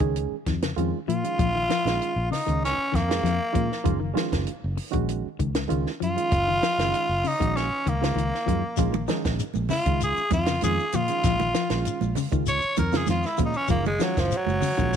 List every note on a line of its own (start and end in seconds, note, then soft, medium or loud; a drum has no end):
0.00 0.28 C#2 medium
0.00 0.35 D#3 medium
0.00 0.18 D#3 medium
0.00 0.35 G#3 medium
0.00 0.35 C#4 medium
0.00 0.35 G#4 loud
0.00 kick medium
0.00 closed hi-hat soft
0.16 closed hi-hat medium
0.31 muted fingered electric bass stroke soft
0.46 0.74 F2 medium
0.46 0.56 D#3 medium
0.46 kick medium
0.46 snare soft
0.46 closed hi-hat soft
0.62 0.71 C#3 medium
0.62 snare medium
0.62 closed hi-hat medium
0.76 0.92 F2 medium
0.76 0.98 D#3 medium
0.76 0.96 D#3 medium
0.76 0.98 G#3 medium
0.76 0.98 C#4 medium
0.76 0.98 F4 loud
0.76 closed hi-hat medium
1.08 1.22 A#2 medium
1.08 1.26 F3 medium
1.08 2.28 F4 loud
1.08 closed hi-hat medium
1.24 1.52 D#3 medium
1.24 1.52 G#3 medium
1.24 1.52 C#4 medium
1.24 1.52 F4 medium
1.24 closed hi-hat soft
1.39 1.67 A#1 medium
1.39 1.48 F3 medium
1.39 kick loud
1.39 closed hi-hat medium
1.55 1.63 D#3 medium
1.69 1.87 F3 medium
1.69 snare medium
1.69 closed hi-hat medium
1.85 1.99 A#1 medium
1.85 2.13 D#3 medium
1.85 2.13 G#3 medium
1.85 2.13 C#4 medium
1.85 2.13 F4 medium
1.85 snare medium
1.85 closed hi-hat medium
2.02 closed hi-hat medium
2.16 2.30 A#1 medium
2.31 2.40 C#3 medium
2.31 2.61 D#4 medium
2.31 snare soft
2.31 open hi-hat medium
2.46 2.76 C#2 medium
2.46 2.65 D#3 medium
2.46 2.75 D#3 medium
2.46 2.75 G#3 medium
2.46 2.75 C#4 medium
2.46 2.75 D#4 medium
2.46 kick medium
2.46 closed hi-hat medium
2.65 2.97 C#4 loud
2.65 snare soft
2.65 closed hi-hat medium
2.78 muted fingered electric bass stroke soft
2.92 3.21 F2 medium
2.92 3.02 D#3 medium
2.92 4.14 A#3 loud
2.92 kick medium
2.92 snare soft
2.92 closed hi-hat soft
3.08 3.30 D#3 medium
3.08 3.30 G#3 medium
3.08 3.30 C#4 medium
3.08 3.29 G#4 medium
3.08 muted clean electric guitar stroke medium
3.08 snare medium
3.08 closed hi-hat medium
3.23 3.38 F2 loud
3.23 3.42 F3 medium
3.23 snare soft
3.23 closed hi-hat medium
3.53 3.69 A#2 medium
3.53 3.68 D#3 medium
3.53 3.72 F3 medium
3.53 3.68 G#3 medium
3.53 3.68 C#4 medium
3.53 3.68 F4 medium
3.53 kick medium
3.53 closed hi-hat medium
3.72 snare soft
3.84 4.13 F#1 medium
3.84 3.99 D#3 loud
3.84 3.94 F3 medium
3.84 3.99 G#3 medium
3.84 3.99 C#4 medium
3.84 3.99 F4 loud
3.84 kick medium
3.84 closed hi-hat medium
4.00 4.09 D#3 medium
4.14 4.50 D#3 loud
4.14 4.34 F3 medium
4.14 4.50 G#3 medium
4.14 4.50 C#4 medium
4.14 4.51 F4 loud
4.14 snare medium
4.14 closed hi-hat medium
4.32 4.46 F#1 medium
4.32 kick medium
4.32 snare medium
4.32 closed hi-hat medium
4.47 closed hi-hat medium
4.64 4.77 F#1 loud
4.77 muted clean electric guitar stroke medium
4.77 open hi-hat medium
4.91 5.22 A#1 medium
4.91 5.27 D#3 medium
4.91 5.12 D#3 medium
4.91 5.27 G#3 medium
4.91 5.27 C#4 medium
4.91 5.27 F#4 loud
4.91 kick medium
4.91 closed hi-hat medium
5.09 closed hi-hat medium
5.26 muted fingered electric bass stroke soft
5.39 5.67 C#2 medium
5.39 5.49 D#3 medium
5.39 kick medium
5.39 closed hi-hat soft
5.55 5.64 C#3 medium
5.55 snare medium
5.55 closed hi-hat medium
5.68 5.85 C#2 medium
5.68 5.91 D#3 medium
5.68 5.87 D#3 medium
5.68 5.90 G#3 medium
5.68 5.91 C#4 medium
5.68 5.91 F4 medium
5.68 closed hi-hat medium
5.86 snare soft
6.00 6.16 F#2 medium
6.00 6.18 F3 medium
6.00 7.29 F4 loud
6.00 closed hi-hat medium
6.16 6.44 D#3 medium
6.16 6.44 G#3 medium
6.16 6.44 C#4 medium
6.16 6.45 F4 medium
6.16 closed hi-hat medium
6.31 6.60 F#1 medium
6.31 muted clean electric guitar stroke medium
6.31 kick medium
6.31 closed hi-hat medium
6.48 6.56 D#3 medium
6.62 6.80 F3 medium
6.62 snare medium
6.62 closed hi-hat medium
6.78 6.92 F#1 medium
6.78 7.07 D#3 medium
6.78 7.07 G#3 medium
6.78 7.07 C#4 medium
6.78 7.07 F4 medium
6.78 snare medium
6.78 closed hi-hat medium
6.94 closed hi-hat medium
7.09 7.23 F#1 medium
7.24 7.33 C#3 medium
7.24 7.58 D#4 loud
7.24 open hi-hat medium
7.40 7.68 A#1 medium
7.40 7.58 D#3 medium
7.40 7.68 D#3 medium
7.40 7.68 G#3 medium
7.40 7.68 C#4 medium
7.40 7.68 F#4 medium
7.40 kick medium
7.40 closed hi-hat soft
7.57 7.90 C#4 loud
7.57 snare soft
7.57 closed hi-hat medium
7.71 muted fingered electric bass stroke soft
7.86 8.14 C#2 medium
7.86 7.95 D#3 medium
7.86 9.07 A#3 medium
7.86 kick medium
7.86 closed hi-hat soft
8.01 8.10 C#3 medium
8.01 8.22 D#3 medium
8.01 8.22 G#3 medium
8.01 8.22 C#4 medium
8.01 8.22 F4 medium
8.01 snare medium
8.01 closed hi-hat medium
8.15 8.30 C#2 medium
8.15 8.34 D#3 medium
8.15 closed hi-hat medium
8.35 snare soft
8.46 8.62 F#2 medium
8.46 8.62 D#3 medium
8.46 8.64 F3 medium
8.46 8.62 G#3 medium
8.46 8.62 C#4 medium
8.46 8.62 F4 medium
8.46 kick medium
8.46 closed hi-hat medium
8.77 9.07 A#1 medium
8.77 8.92 D#3 medium
8.77 8.87 F3 medium
8.77 8.93 G#3 medium
8.77 8.93 C#4 medium
8.77 8.93 F4 loud
8.77 kick medium
8.77 closed hi-hat medium
8.77 shekere medium
8.93 9.02 D#3 medium
8.93 high conga loud
8.93 shekere soft
9.08 9.44 D#3 loud
9.08 9.26 F3 medium
9.08 9.44 G#3 medium
9.08 9.44 C#4 medium
9.08 9.44 D#4 loud
9.08 snare medium
9.08 closed hi-hat medium
9.08 shekere medium
9.25 9.39 A#1 medium
9.25 kick medium
9.25 snare medium
9.25 closed hi-hat medium
9.25 shekere soft
9.39 closed hi-hat medium
9.39 high conga soft
9.39 shekere medium
9.54 9.69 A#1 loud
9.54 high conga medium
9.54 shekere soft
9.69 9.80 C#3 medium
9.69 10.00 F4 loud
9.69 snare soft
9.69 open hi-hat medium
9.69 low conga medium
9.69 shekere medium
9.86 10.14 C#2 medium
9.86 10.21 D#3 medium
9.86 10.05 D#3 medium
9.86 10.21 G#3 medium
9.86 10.21 C#4 medium
9.86 10.21 F4 medium
9.86 kick medium
9.86 closed hi-hat medium
9.86 shekere soft
10.01 10.32 G#4 loud
10.01 closed hi-hat medium
10.01 high conga soft
10.01 shekere medium
10.17 muted fingered electric bass stroke soft
10.17 shekere soft
10.31 10.60 F2 medium
10.31 10.41 D#3 medium
10.31 10.63 F4 medium
10.31 kick medium
10.31 closed hi-hat soft
10.31 high conga medium
10.31 shekere medium
10.46 10.57 C#3 medium
10.46 snare medium
10.46 closed hi-hat medium
10.46 shekere soft
10.61 10.78 F2 medium
10.61 10.80 D#3 medium
10.61 10.85 D#3 medium
10.61 10.84 G#3 medium
10.61 10.84 C#4 medium
10.61 10.85 F4 medium
10.61 10.97 G#4 loud
10.61 closed hi-hat medium
10.61 high conga medium
10.61 shekere medium
10.79 shekere soft
10.92 11.08 A#2 medium
10.92 11.12 F3 medium
10.92 12.14 F4 loud
10.92 closed hi-hat medium
10.92 low conga medium
10.92 shekere medium
11.08 11.37 D#3 medium
11.08 11.37 G#3 medium
11.08 11.37 C#4 medium
11.08 11.37 F4 medium
11.08 closed hi-hat medium
11.08 shekere soft
11.23 11.52 A#1 medium
11.23 11.34 F3 medium
11.23 kick medium
11.23 snare soft
11.23 closed hi-hat medium
11.23 high conga soft
11.23 low conga medium
11.23 shekere medium
11.39 11.48 D#3 medium
11.39 high conga medium
11.39 shekere soft
11.54 11.72 F3 medium
11.54 snare medium
11.54 closed hi-hat medium
11.54 shekere medium
11.70 11.84 A#1 medium
11.70 11.98 D#3 medium
11.70 11.98 G#3 medium
11.70 11.98 C#4 medium
11.70 11.98 F4 medium
11.70 snare medium
11.70 closed hi-hat medium
11.70 shekere soft
11.85 closed hi-hat medium
11.85 high conga soft
11.85 shekere medium
12.01 12.15 A#1 medium
12.01 high conga medium
12.01 shekere soft
12.15 12.26 C#3 medium
12.15 open hi-hat medium
12.15 low conga medium
12.15 shekere medium
12.31 12.60 C#2 medium
12.31 12.60 D#3 medium
12.31 12.51 D#3 medium
12.31 12.60 G#3 medium
12.31 12.60 C#4 medium
12.31 12.60 F4 medium
12.31 kick medium
12.31 closed hi-hat soft
12.31 shekere soft
12.46 12.78 C#5 loud
12.46 closed hi-hat medium
12.46 high conga soft
12.46 shekere medium
12.62 muted fingered electric bass stroke soft
12.62 shekere soft
12.77 13.06 F2 medium
12.77 12.87 D#3 medium
12.77 12.98 A#4 medium
12.77 kick medium
12.77 closed hi-hat soft
12.77 high conga loud
12.77 low conga medium
12.77 shekere medium
12.92 13.01 C#3 medium
12.92 13.14 D#3 medium
12.92 13.14 G#3 medium
12.92 13.14 C#4 medium
12.92 13.14 F4 medium
12.92 snare medium
12.92 closed hi-hat medium
12.92 shekere soft
12.97 13.09 G#4 loud
13.07 13.23 F2 medium
13.07 13.26 D#3 medium
13.07 13.28 F4 medium
13.07 snare soft
13.07 closed hi-hat medium
13.07 high conga medium
13.07 shekere medium
13.22 snare soft
13.22 shekere soft
13.27 13.40 E4 medium
13.37 13.54 A#2 medium
13.37 13.53 D#3 medium
13.37 13.56 F3 medium
13.37 13.53 G#3 medium
13.37 13.53 C#4 medium
13.37 13.53 F4 medium
13.37 kick medium
13.37 closed hi-hat medium
13.37 low conga medium
13.37 shekere medium
13.46 13.59 D#4 medium
13.54 13.70 C#4 loud
13.54 shekere soft
13.68 13.98 F#1 medium
13.68 13.84 D#3 medium
13.68 13.78 F3 medium
13.68 13.84 G#3 medium
13.68 13.85 A#3 medium
13.68 13.85 C#4 medium
13.68 13.85 F4 medium
13.68 kick medium
13.68 closed hi-hat medium
13.68 shekere medium
13.84 13.93 D#3 medium
13.84 14.05 G#3 medium
13.84 high conga loud
13.84 shekere soft
13.99 14.35 D#3 medium
13.99 14.18 F3 medium
13.99 14.36 G#3 medium
13.99 14.36 C#4 medium
13.99 14.35 F4 medium
13.99 snare medium
13.99 closed hi-hat medium
13.99 shekere medium
14.04 14.22 F#3 medium
14.17 14.31 F#1 medium
14.17 14.39 F3 medium
14.17 kick medium
14.17 snare medium
14.17 closed hi-hat medium
14.17 shekere soft
14.31 closed hi-hat medium
14.31 high conga soft
14.31 shekere medium
14.37 14.96 F#3 loud
14.46 14.61 F#1 medium
14.46 high conga medium
14.46 shekere soft
14.61 14.71 C#3 medium
14.61 open hi-hat medium
14.61 low conga medium
14.61 shekere medium
14.77 14.96 A#1 medium
14.77 14.96 D#3 medium
14.77 14.96 G#3 medium
14.77 14.96 C#4 medium
14.77 14.96 F4 medium
14.77 kick medium
14.77 closed hi-hat soft
14.77 shekere soft
14.93 high conga soft